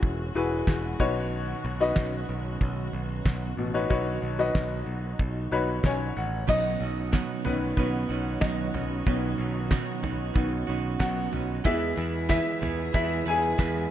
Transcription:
Already playing: E3 G#3 C#4 E4 F#4 G#4 B4
0.03 E1, kick
0.35 E1 E4 F#4 G#4 B4
0.67 E1, kick, snare, clap
0.99 B1 B2 D#3 B3 C#4 D#4 F#4 B4 C#5, kick
1.65 B1
1.80 D#4 F#4 B4 D#5
1.96 B1, kick, snare, clap
2.29 B1
2.61 B1, kick
2.93 B1
3.25 B1, kick, snare, clap
3.57 A1 B2 D#4
3.74 D#4 F#4 B4 C#5
3.90 B1 D#4 F#4 B4 C#5, kick
4.22 B1
4.39 D#4 F#4 B4 D#5
4.55 B1, kick, snare, clap
4.86 B1
5.19 B1, kick
5.52 B1 D#4 F#4 B4 C#5 B5
5.83 B1 C#4 C#5 G#5, kick, snare, clap
6.17 A1 F#5
6.47 B1 B2 D#3 F#3 B3 C#4 D#4 F#4 D#5, kick, crash
6.80 B1 B3 C#4 D#4 F#4
7.12 B2 F#3 B3 C#4 D#4 F#4, kick, snare, clap
7.45 B1 D#3 B3 C#4 D#4 F#4 B4, floor tom
7.77 B1 B3 C#4 D#4 F#4 B4, kick
8.09 B1 B3 C#4 D#4 F#4
8.41 B1 B2 F#3 B3 C#4 D#4 F#4 D#5, kick, snare, clap
8.74 B1 B3 C#4 D#4 F#4, floor tom
9.06 B1 B2 D#3 F#3 B3 C#4 D#4 F#4, kick
9.38 B1 B3 C#4 D#4 F#4
9.71 B2 F#3 B3 C#4 D#4 F#4, kick, snare, clap
10.02 B1 B3 C#4 D#4 F#4, floor tom
10.34 B1 D#3 B3 C#4 D#4 F#4, kick
10.67 B1 B3 C#4 D#4 F#4
10.99 B1 B2 F#3 B3 C#4 D#4 F#4 F#5, kick, snare, clap
11.32 B1 B3 C#4 D#4 F#4, floor tom
11.64 E2 E3 G#3 B3 E4 G#4 B4 E5, kick, closed hi-hat
11.96 E2 E4 G#4 B4, closed hi-hat
12.29 E3 E4 G#4 B4 E5, kick, snare, clap, closed hi-hat
12.61 E2 E4 G#4 B4, closed hi-hat, floor tom
12.93 E2 E3 E4 G#4 B4 E5, kick, closed hi-hat
13.26 E2 E4 G#4 B4 G#5, closed hi-hat
13.30 G#4
13.43 closed hi-hat
13.58 E2 E3 E4 G#4 B4, kick, snare, clap, closed hi-hat

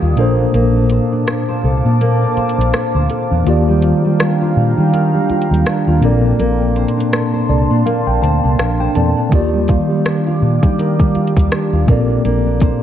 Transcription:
Already playing: D#3 G3 A#3 D4 F4 G4 F5 G5 D#6
0.02 D#2 F4
0.15 A#1 A#2 A#3 D4 C5 F5 A5 D6, closed hi-hat
0.19 A4 C5
0.39 D4
0.54 A#1 A#3, closed hi-hat
0.76 D4
0.90 C5, closed hi-hat
1.12 D4
1.27 A4, cross-stick, closed hi-hat
1.49 C5
1.64 C2 A4
1.85 A#2 D4
2.01 A#3, closed hi-hat
2.22 D4
2.37 C5, muted fingered electric bass stroke, closed hi-hat
2.49 closed hi-hat
2.58 A#1 D4, closed hi-hat
2.73 A4, cross-stick, closed hi-hat
2.95 D2 C5
3.10 A4, closed hi-hat
3.31 E2 D4
3.44 D#2 D#3 A#3 D4 F4 F5 G5 A#5, closed hi-hat
3.48 G4 D5
3.68 G3
3.82 F4, closed hi-hat
4.05 G3
4.20 D4, cross-stick, closed hi-hat
4.41 F4
4.56 A#2 D4
4.78 D#3 G3
4.93 D#3, closed hi-hat
5.14 G3
5.30 F4, muted fingered electric bass stroke, closed hi-hat
5.42 closed hi-hat
5.51 D#2 G3, closed hi-hat
5.66 D4, cross-stick, closed hi-hat
5.87 D#2 F4
6.00 A#1 A#2 A#3 C4 A5 C6, closed hi-hat
6.04 A4 D5
6.24 D4
6.39 A#1 A#3, closed hi-hat
6.61 D4
6.76 C5, closed hi-hat
6.88 closed hi-hat
6.97 D4, closed hi-hat
7.12 A4, cross-stick, closed hi-hat
7.33 C5
7.49 C2 A4 D5
7.70 A#2 D4
7.86 A#3 F5, closed hi-hat
8.07 A#1 D4 G5
8.22 D2 C5 A5, closed hi-hat
8.43 C2 D4
8.59 A#1 A4 F5, cross-stick, closed hi-hat
8.80 C5 G5
8.94 E2 A#2 A#3 C4 A4 D5 A5, closed hi-hat
9.16 D4
9.29 D#2 D#3 A#3 F4 G4 D5 F5 D6, kick, closed hi-hat
9.34 G4 D5
9.53 G3
9.68 F4, kick, closed hi-hat
9.90 G3
10.05 D4, cross-stick, closed hi-hat
10.27 F4
10.42 A#2 D4
10.63 D#3 G3, kick
10.78 D#3, closed hi-hat
11.00 G3, kick
11.15 F4, muted fingered electric bass stroke, closed hi-hat
11.27 closed hi-hat
11.36 D#2 G3, kick, closed hi-hat
11.52 D4, cross-stick, closed hi-hat
11.73 D#2 F4
11.85 A#1 A#2 A#3 C4 D5 A5 C6, kick, closed hi-hat
11.90 A4 D5
12.09 D4
12.25 A#1 A#3, closed hi-hat
12.46 D4
12.60 C5, kick, closed hi-hat

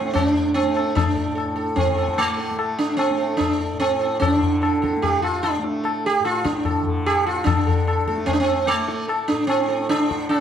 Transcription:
Already playing: A2 D3 C4
0.00 A3
0.05 tabla te
0.14 C#4, tabla na, tabla ge
0.30 D4
0.35 tabla te
0.54 C4, tabla na
0.62 A3
0.75 A4, tabla na
0.95 D4, tabla na, tabla ge
1.15 A4, tabla ge
1.25 A2
1.35 A4, tabla na
1.56 A4, tabla te
1.76 C4, tabla tin, tabla ge
1.88 D3
1.96 A4, tabla na
2.09 tabla ke
2.18 A3, tabla na
2.37 A4, tabla te
2.51 A3
2.58 A4, tabla na
2.79 D4, tabla te
2.97 C4, tabla na
3.10 A3
3.17 A4, tabla te
3.37 D4, tabla na, tabla ge
3.58 A4, tabla te
3.73 A2
3.80 C4, tabla na
3.99 A4, tabla na
4.20 D4, tabla na, tabla ge
4.34 D3
4.43 tabla ge
4.62 A4, tabla na
4.82 A4, tabla ke
4.93 A3, tabla te
5.02 G4, tabla tin, tabla ge
5.22 F4, tabla na
5.43 D4, tabla na
5.59 A3
5.64 tabla te
5.84 A4, tabla na
6.05 G4, tabla te
6.20 A2
6.25 F4, tabla na
6.44 D4, tabla ke
6.55 tabla te
6.65 A4, tabla na, tabla ge
6.81 D3
6.87 tabla ge
7.06 G4, tabla na
7.26 F4, tabla na
7.44 D3 D4 A4, tabla na, tabla ge
7.67 A4, tabla ge
7.87 A4, tabla na
8.07 A3 A4, tabla ke
8.18 tabla te
8.26 C4, tabla tin, tabla ge
8.33 D4
8.40 C4
8.48 tabla na
8.67 A3, tabla na
8.88 A4, tabla te
9.08 A4, tabla na
9.28 A2 D4, tabla te
9.47 C4, tabla na
9.68 A4, tabla te
9.89 D3 D4, tabla na
10.09 A4, tabla ke
10.29 C#4, tabla na

